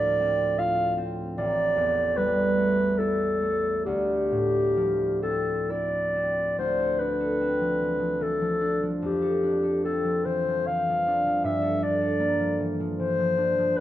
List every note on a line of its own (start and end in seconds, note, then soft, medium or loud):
0.00 1.41 D2 medium
0.00 1.40 A2 soft
0.00 1.41 F3 soft
0.00 0.60 D5 medium
0.20 0.96 C4 soft
0.58 1.41 F4 soft
0.58 0.97 F5 medium
0.98 1.40 C4 soft
1.38 3.90 A1 medium
1.38 2.18 D5 medium
1.76 3.89 E2 soft
2.16 6.07 G3 soft
2.16 2.99 B4 medium
2.57 3.41 A3 soft
2.98 5.68 E4 soft
2.98 3.84 A4 medium
3.42 7.32 A3 soft
3.85 6.57 D2 medium
3.85 5.20 G4 medium
4.31 6.62 A2 soft
4.77 7.59 F3 soft
5.22 6.14 C4 soft
5.22 5.72 A4 medium
5.70 6.62 E4 soft
5.70 6.57 D5 medium
6.15 7.40 C4 soft
6.58 9.06 D2 soft
6.58 7.01 C5 medium
6.79 7.19 A4 soft
6.99 8.60 D4 soft
6.99 8.23 B4 medium
7.20 9.21 A4 soft
7.41 9.84 C4 soft
7.61 7.98 F3 soft
7.81 8.16 E3 soft
7.99 8.40 F3 soft
8.21 8.56 E3 soft
8.21 8.87 A4 medium
8.41 8.81 F3 soft
8.61 9.42 D4 soft
8.83 10.03 F3 soft
9.02 11.47 F2 soft
9.02 9.82 G4 medium
9.22 9.61 A4 soft
9.43 11.06 D4 soft
9.63 11.60 A4 soft
9.84 11.48 C4 soft
9.84 10.26 A4 medium
10.04 10.47 F3 soft
10.25 10.61 E3 soft
10.25 10.68 C5 medium
10.48 10.88 F3 soft
10.66 11.01 E3 soft
10.66 11.44 F5 medium
10.89 11.25 F3 soft
11.07 11.81 D4 soft
11.26 12.39 F3 soft
11.44 13.77 G2 soft
11.44 11.84 E5 medium
11.62 12.00 A4 soft
11.83 13.36 D4 soft
11.83 12.71 D5 medium
12.01 13.80 A4 soft
12.19 13.78 A#3 soft
12.40 12.79 F3 soft
12.60 12.92 E3 soft
12.80 13.17 F3 soft
12.99 13.32 E3 soft
12.99 13.78 C5 medium
13.18 13.57 F3 soft
13.37 13.79 D4 soft
13.58 13.80 F3 soft
13.77 13.80 B4 medium